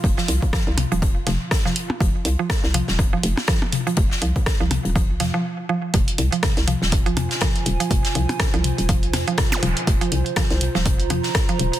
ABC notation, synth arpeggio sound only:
X:1
M:4/4
L:1/16
Q:"Swing 16ths" 1/4=122
K:Fm
V:1 name="Synth arpeggio sound" clef=bass
z F, z2 F, z2 F, z2 F, z2 F, z2 | F, z2 F, z2 F, z2 F, z2 F, z2 F, | z2 F, z2 F, z2 F, z F, F, z2 F, z | F, z2 F, z2 F, z2 F, z2 F, z2 F, |
z2 F, z2 F, z2 F, z2 F, z2 F, z | z F, z2 F, z2 F, z2 F, z2 F, z2 |]